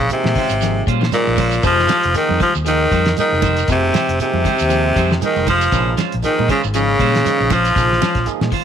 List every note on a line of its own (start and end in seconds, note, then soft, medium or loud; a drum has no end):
0.10 0.83 C3 medium
0.10 0.33 F3 medium
0.10 0.33 A#3 medium
0.10 0.33 D#4 medium
0.10 0.34 G#4 medium
0.10 closed hi-hat medium
0.10 high conga soft
0.10 shekere medium
0.24 0.35 A#2 medium
0.24 snare medium
0.24 high conga medium
0.35 0.56 D#3 medium
0.35 0.53 G#3 medium
0.35 0.54 C#4 medium
0.35 0.54 F4 medium
0.35 0.54 C5 medium
0.35 kick medium
0.35 open hi-hat medium
0.35 low conga medium
0.35 shekere soft
0.49 0.81 G#1 medium
0.49 closed hi-hat medium
0.49 shekere medium
0.61 0.81 F3 medium
0.61 0.84 F3 medium
0.61 0.85 A#3 medium
0.61 0.85 D#4 medium
0.61 0.85 G#4 medium
0.61 snare soft
0.61 closed hi-hat medium
0.61 high conga soft
0.61 shekere medium
0.87 1.09 A#2 medium
0.87 0.98 G3 medium
0.87 1.02 G#3 medium
0.87 1.02 C#4 medium
0.87 1.02 F4 medium
0.87 1.01 C5 medium
0.87 kick medium
0.87 closed hi-hat medium
0.87 shekere soft
1.01 1.21 D#3 medium
1.01 1.17 C#4 soft
1.01 1.16 C5 medium
1.01 snare medium
1.01 low conga medium
1.01 shekere soft
1.12 1.61 A#2 medium
1.12 1.36 F3 medium
1.12 1.36 A#3 medium
1.12 1.61 A#3 medium
1.12 1.36 D#4 medium
1.12 1.36 G#4 medium
1.12 closed hi-hat medium
1.12 high conga medium
1.12 shekere medium
1.27 1.58 A#1 medium
1.27 shekere soft
1.37 1.58 F3 medium
1.37 1.55 G#3 medium
1.37 1.55 C#4 medium
1.37 1.55 C5 medium
1.37 muted clean electric guitar stroke medium
1.37 kick medium
1.37 open hi-hat medium
1.37 high conga medium
1.37 low conga medium
1.37 shekere medium
1.51 closed hi-hat medium
1.51 shekere medium
1.63 1.85 F1 loud
1.63 1.84 C3 medium
1.63 2.11 F3 loud
1.63 1.86 F3 medium
1.63 2.13 F3 loud
1.63 1.80 G#3 medium
1.63 1.86 A#3 medium
1.63 1.86 D#4 medium
1.63 1.81 D#4 medium
1.63 2.12 F4 medium
1.63 1.81 G4 medium
1.63 1.87 G#4 loud
1.63 1.81 C5 medium
1.63 kick loud
1.63 closed hi-hat medium
1.63 high conga soft
1.63 shekere medium
1.79 snare soft
1.87 2.09 F3 medium
1.87 2.06 G#3 medium
1.87 2.06 D#4 medium
1.87 2.06 G4 medium
1.87 2.06 C5 medium
1.87 snare medium
1.87 closed hi-hat medium
1.87 high conga loud
1.87 shekere medium
2.03 2.14 F1 medium
2.03 closed hi-hat medium
2.14 2.39 D#3 medium
2.14 2.40 D#3 loud
2.14 2.37 F3 medium
2.14 2.38 A#3 medium
2.14 2.38 D#4 medium
2.14 2.40 D#4 medium
2.14 2.38 G#4 medium
2.14 closed hi-hat medium
2.14 high conga soft
2.14 shekere medium
2.29 2.39 F2 medium
2.29 high conga medium
2.40 2.60 D#3 medium
2.40 2.53 F3 medium
2.40 2.54 F3 loud
2.40 2.57 G#3 medium
2.40 2.57 D#4 medium
2.40 2.53 F4 medium
2.40 2.57 G4 medium
2.40 2.57 C5 medium
2.40 kick medium
2.40 closed hi-hat soft
2.40 high conga medium
2.40 low conga medium
2.40 shekere soft
2.55 2.86 D#2 medium
2.55 shekere medium
2.64 3.15 D#3 loud
2.64 2.88 F3 medium
2.64 2.86 F3 medium
2.64 2.88 A#3 medium
2.64 2.88 D#4 medium
2.64 3.15 D#4 medium
2.64 2.88 G#4 medium
2.64 closed hi-hat medium
2.64 high conga soft
2.64 shekere medium
2.69 3.15 D#3 medium
2.91 3.13 F2 medium
2.91 3.03 G3 medium
2.91 3.08 G#3 medium
2.91 3.08 D#4 medium
2.91 3.08 G4 medium
2.91 3.08 C5 medium
2.91 kick medium
2.91 closed hi-hat soft
2.91 shekere soft
3.06 3.26 D#3 medium
3.06 snare medium
3.06 closed hi-hat soft
3.06 low conga medium
3.06 shekere soft
3.17 3.66 D#3 medium
3.17 3.66 D#3 loud
3.17 3.39 F3 medium
3.17 3.40 A#3 medium
3.17 3.40 D#4 medium
3.17 3.66 D#4 medium
3.17 3.40 G#4 medium
3.17 closed hi-hat medium
3.17 high conga medium
3.17 shekere medium
3.32 3.62 F1 medium
3.32 shekere soft
3.42 3.63 F3 medium
3.42 3.59 G#3 medium
3.42 3.59 D#4 medium
3.42 3.60 G4 medium
3.42 3.60 C5 medium
3.42 kick medium
3.42 closed hi-hat soft
3.42 high conga medium
3.42 low conga medium
3.42 shekere medium
3.57 closed hi-hat soft
3.57 shekere medium
3.68 3.90 F1 loud
3.68 3.88 C3 loud
3.68 4.16 C3 medium
3.68 4.17 C3 loud
3.68 3.91 F3 medium
3.68 3.91 A#3 medium
3.68 4.17 C4 medium
3.68 3.92 D#4 medium
3.68 3.91 G#4 medium
3.68 kick medium
3.68 closed hi-hat medium
3.68 high conga soft
3.68 shekere medium
3.93 4.13 F3 medium
3.93 4.10 G#3 medium
3.93 4.11 D#4 medium
3.93 4.11 G4 medium
3.93 4.11 C5 medium
3.93 snare medium
3.93 closed hi-hat medium
3.93 high conga medium
3.93 shekere medium
4.08 4.18 F1 medium
4.08 closed hi-hat medium
4.20 5.19 C3 medium
4.20 4.42 F3 medium
4.20 4.42 A#3 medium
4.20 5.18 C4 medium
4.20 4.43 D#4 medium
4.20 4.43 G#4 medium
4.20 closed hi-hat medium
4.20 high conga soft
4.20 shekere medium
4.34 4.43 F2 medium
4.34 high conga medium
4.45 4.65 D#3 medium
4.45 4.62 G#3 medium
4.45 4.62 D#4 medium
4.45 4.62 G4 medium
4.45 4.62 C5 medium
4.45 kick medium
4.45 snare soft
4.45 closed hi-hat medium
4.45 high conga medium
4.45 low conga medium
4.45 shekere soft
4.59 4.91 D#2 medium
4.59 closed hi-hat medium
4.59 shekere medium
4.69 4.92 F3 medium
4.69 4.90 F3 medium
4.69 4.92 A#3 medium
4.69 4.92 D#4 medium
4.69 4.93 G#4 medium
4.69 closed hi-hat medium
4.69 shekere medium
4.96 5.17 F2 medium
4.96 5.07 G3 medium
4.96 5.12 G#3 medium
4.96 5.13 D#4 medium
4.96 5.13 G4 medium
4.96 5.13 C5 medium
4.96 kick medium
4.96 snare soft
4.96 closed hi-hat medium
4.96 shekere soft
5.10 muted clean electric guitar stroke medium
5.10 snare medium
5.10 low conga medium
5.10 shekere soft
5.20 5.46 D#3 medium
5.20 5.43 F3 medium
5.20 5.43 A#3 medium
5.20 5.44 D#4 medium
5.20 5.44 G#4 loud
5.20 closed hi-hat medium
5.20 high conga medium
5.20 shekere medium
5.24 5.47 D#3 medium
5.24 5.47 D#4 medium
5.36 5.67 F1 medium
5.36 high conga medium
5.36 shekere soft
5.47 5.67 F3 medium
5.47 5.94 F3 medium
5.47 5.95 F3 medium
5.47 5.63 G#3 medium
5.47 5.64 D#4 medium
5.47 5.95 F4 medium
5.47 5.64 G4 medium
5.47 5.64 C5 medium
5.47 kick medium
5.47 closed hi-hat medium
5.47 high conga loud
5.47 low conga medium
5.47 shekere medium
5.61 closed hi-hat medium
5.61 shekere medium
5.72 5.93 A#1 loud
5.72 5.92 C3 loud
5.72 5.95 F3 medium
5.72 5.89 G#3 medium
5.72 5.96 A#3 medium
5.72 5.89 C#4 medium
5.72 5.96 D#4 medium
5.72 5.89 F4 medium
5.72 5.95 G#4 loud
5.72 5.89 C5 medium
5.72 kick medium
5.72 closed hi-hat medium
5.72 high conga soft
5.72 shekere medium
5.97 6.18 F3 medium
5.97 6.14 G#3 medium
5.97 6.14 C#4 medium
5.97 6.14 F4 medium
5.97 6.15 C5 medium
5.97 snare medium
5.97 closed hi-hat medium
5.97 high conga medium
5.97 shekere medium
6.12 6.23 A#1 medium
6.12 closed hi-hat medium
6.23 6.47 D#3 medium
6.23 6.48 D#3 medium
6.23 6.46 F3 medium
6.23 6.46 A#3 medium
6.23 6.46 D#4 medium
6.23 6.48 D#4 medium
6.23 6.46 G#4 loud
6.23 closed hi-hat medium
6.23 high conga soft
6.23 shekere medium
6.39 6.48 A#2 medium
6.39 high conga medium
6.48 6.60 C#3 medium
6.48 6.62 C#3 medium
6.48 6.70 D#3 medium
6.48 6.65 G#3 medium
6.48 6.65 C#4 medium
6.48 6.62 C#4 medium
6.48 6.66 F4 medium
6.48 6.66 C5 medium
6.48 kick medium
6.48 closed hi-hat medium
6.48 high conga medium
6.48 low conga medium
6.48 shekere soft
6.63 6.94 G#1 medium
6.63 shekere medium
6.74 7.53 C#3 medium
6.74 7.54 C#3 loud
6.74 6.97 F3 medium
6.74 6.94 F3 medium
6.74 6.97 A#3 medium
6.74 7.56 C#4 medium
6.74 6.97 D#4 medium
6.74 6.97 G#4 medium
6.74 closed hi-hat medium
6.74 high conga soft
6.74 shekere medium
6.99 7.21 A#2 medium
6.99 7.11 G3 medium
6.99 7.14 G#3 medium
6.99 7.12 C#4 medium
6.99 7.12 F4 medium
6.99 7.11 C5 medium
6.99 kick medium
6.99 closed hi-hat medium
6.99 shekere soft
7.12 7.34 D#3 medium
7.12 7.28 C#4 soft
7.12 7.28 F4 soft
7.12 7.27 C5 medium
7.12 snare medium
7.12 closed hi-hat soft
7.12 shekere soft
7.24 7.47 F3 medium
7.24 7.47 A#3 medium
7.24 7.47 D#4 medium
7.24 7.48 G#4 medium
7.24 snare soft
7.24 closed hi-hat medium
7.24 high conga medium
7.24 shekere loud
7.40 7.70 A#1 medium
7.40 shekere soft
7.50 7.70 F3 medium
7.50 8.28 F3 medium
7.50 8.28 F3 loud
7.50 7.67 G#3 medium
7.50 7.67 C#4 medium
7.50 7.67 F4 medium
7.50 7.67 C5 medium
7.50 kick medium
7.50 closed hi-hat medium
7.50 high conga medium
7.50 low conga medium
7.50 shekere medium
7.54 8.29 F4 medium
7.65 closed hi-hat soft
7.65 shekere medium
7.75 7.97 A#1 loud
7.75 7.96 C3 loud
7.75 7.98 F3 medium
7.75 7.99 A#3 medium
7.75 7.99 D#4 medium
7.75 7.99 G#4 medium
7.75 kick loud
7.75 closed hi-hat medium
7.75 high conga soft
7.75 shekere medium
7.92 snare soft
8.01 8.22 F3 medium
8.01 8.18 G#3 medium
8.01 8.18 C#4 medium
8.01 8.19 F4 medium
8.01 8.19 C5 medium
8.01 snare medium
8.01 closed hi-hat soft
8.01 high conga medium
8.01 shekere medium
8.15 8.25 A#1 medium
8.15 kick medium
8.15 snare soft
8.15 closed hi-hat medium
8.26 8.49 F3 loud
8.26 8.49 A#3 medium
8.26 8.49 D#4 medium
8.26 8.49 G#4 loud
8.26 closed hi-hat medium
8.26 high conga soft
8.26 shekere medium
8.41 8.51 A#2 medium
8.41 snare medium
8.41 high conga medium
8.52 8.64 D#3 medium
8.52 8.64 G#3 medium
8.52 8.64 F4 medium
8.52 8.64 C5 medium
8.52 kick medium
8.52 open hi-hat medium
8.52 low conga medium
8.52 shekere soft